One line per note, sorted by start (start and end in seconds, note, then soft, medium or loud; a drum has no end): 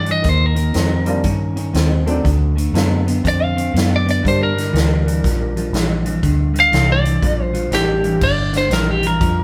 0.00 0.23 G2 medium
0.00 0.11 D5 medium
0.06 0.23 G2 medium
0.06 0.22 E3 medium
0.06 closed hi-hat medium
0.11 0.29 D#5 medium
0.22 0.73 D#2 medium
0.22 0.53 D#3 medium
0.22 0.53 A#3 medium
0.22 kick medium
0.22 snare soft
0.22 closed hi-hat medium
0.29 0.46 C5 medium
0.46 1.89 A#4 medium
0.55 0.72 D#3 medium
0.55 0.72 A#3 medium
0.55 closed hi-hat medium
0.73 1.23 F2 medium
0.73 1.03 D#3 medium
0.73 1.03 C4 medium
0.73 snare medium
0.73 closed hi-hat medium
1.05 1.22 D#3 medium
1.05 1.23 G3 medium
1.05 1.23 A#3 medium
1.05 1.22 C4 medium
1.05 1.24 D4 medium
1.05 1.24 F4 medium
1.05 closed hi-hat medium
1.24 1.73 G2 medium
1.24 1.53 D#3 medium
1.24 1.53 C#4 medium
1.24 kick medium
1.24 closed hi-hat medium
1.56 1.72 D#3 medium
1.56 1.73 C#4 medium
1.56 closed hi-hat medium
1.73 2.23 D#2 medium
1.73 2.03 D#3 medium
1.73 2.03 C4 medium
1.73 snare loud
1.73 closed hi-hat medium
2.06 2.23 D#3 medium
2.06 2.23 F#3 medium
2.06 2.23 A3 medium
2.06 2.23 C4 medium
2.06 2.24 D4 medium
2.06 closed hi-hat medium
2.24 2.72 D2 medium
2.24 2.53 D3 medium
2.24 2.53 A3 medium
2.24 kick medium
2.24 closed hi-hat medium
2.56 2.72 D3 medium
2.56 2.73 A3 medium
2.56 closed hi-hat medium
2.73 3.22 F#2 medium
2.73 3.03 D3 medium
2.73 3.03 F#3 medium
2.73 3.03 A3 medium
2.73 3.03 B3 medium
2.73 3.03 C4 medium
2.73 3.04 F4 medium
2.73 snare medium
2.73 closed hi-hat medium
3.06 3.22 D3 medium
3.06 3.23 B3 medium
3.06 closed hi-hat medium
3.24 3.73 F2 medium
3.24 3.53 D3 medium
3.24 3.53 C4 medium
3.24 kick medium
3.24 closed hi-hat medium
3.28 3.44 D5 medium
3.44 3.91 F5 medium
3.56 3.72 D3 medium
3.56 3.72 C4 medium
3.56 closed hi-hat medium
3.73 4.22 F#2 medium
3.73 4.02 D3 medium
3.73 4.03 B3 medium
3.73 closed hi-hat medium
3.78 snare loud
3.96 4.09 D5 medium
4.05 4.22 D3 medium
4.05 4.22 B3 medium
4.05 closed hi-hat medium
4.11 4.25 D5 medium
4.22 4.52 G2 medium
4.22 4.73 G2 medium
4.22 4.52 D3 medium
4.22 5.63 G3 medium
4.22 5.63 A#3 medium
4.22 5.63 D4 medium
4.22 kick medium
4.22 closed hi-hat medium
4.27 5.64 G4 medium
4.27 4.42 C5 medium
4.43 5.87 A#4 medium
4.56 4.71 G2 medium
4.56 4.72 D3 medium
4.56 snare soft
4.56 closed hi-hat medium
4.73 5.22 D2 medium
4.73 5.02 G2 medium
4.73 5.02 E3 medium
4.73 closed hi-hat medium
4.77 snare medium
5.05 5.21 G2 medium
5.05 5.22 E3 medium
5.05 closed hi-hat medium
5.24 5.72 A#1 medium
5.24 5.53 G2 medium
5.24 5.53 F3 medium
5.24 kick loud
5.24 snare soft
5.24 closed hi-hat medium
5.56 5.72 G2 medium
5.56 5.72 F3 medium
5.56 closed hi-hat medium
5.73 6.21 A#1 medium
5.73 6.02 G2 medium
5.73 6.02 E3 medium
5.73 snare loud
5.73 closed hi-hat medium
6.05 6.21 G2 medium
6.05 6.21 E3 medium
6.05 closed hi-hat medium
6.23 6.71 D2 medium
6.23 6.52 G2 medium
6.23 6.52 D3 medium
6.23 kick medium
6.23 closed hi-hat medium
6.54 6.70 G2 medium
6.54 6.70 D3 medium
6.54 closed hi-hat medium
6.60 6.90 F5 medium
6.71 7.21 C2 medium
6.71 7.01 G2 medium
6.71 7.01 E3 medium
6.71 snare medium
6.71 closed hi-hat medium
6.92 7.42 D5 medium
7.03 7.20 G2 medium
7.03 7.20 E3 medium
7.03 closed hi-hat medium
7.22 7.71 A#1 medium
7.22 7.51 G2 medium
7.22 7.51 F3 medium
7.22 kick loud
7.22 closed hi-hat medium
7.42 7.73 C5 medium
7.53 7.70 G2 medium
7.53 7.70 F3 medium
7.53 closed hi-hat medium
7.71 8.20 A1 medium
7.71 8.00 G2 medium
7.71 8.01 E3 medium
7.71 8.21 G3 soft
7.71 8.22 A#3 soft
7.71 8.22 D4 soft
7.71 8.22 G4 medium
7.71 8.22 G4 loud
7.71 snare loud
7.71 closed hi-hat medium
8.04 8.20 G2 medium
8.04 8.20 E3 medium
8.04 closed hi-hat medium
8.21 8.69 G1 medium
8.21 8.51 G2 medium
8.21 8.51 D3 medium
8.21 8.55 D5 medium
8.21 kick loud
8.21 crash medium
8.53 8.70 G2 medium
8.53 8.70 D3 medium
8.53 snare soft
8.53 closed hi-hat medium
8.57 8.73 C5 medium
8.70 9.19 A#1 medium
8.70 9.00 G2 medium
8.70 9.00 E3 medium
8.70 8.91 A#4 medium
8.70 snare medium
8.70 closed hi-hat medium
8.91 9.07 G4 medium
9.03 9.19 G2 medium
9.03 9.19 E3 medium
9.03 closed hi-hat medium
9.07 9.44 A#4 medium
9.20 9.44 F2 medium
9.20 9.44 G2 medium
9.20 9.44 F3 medium
9.20 kick loud
9.20 closed hi-hat medium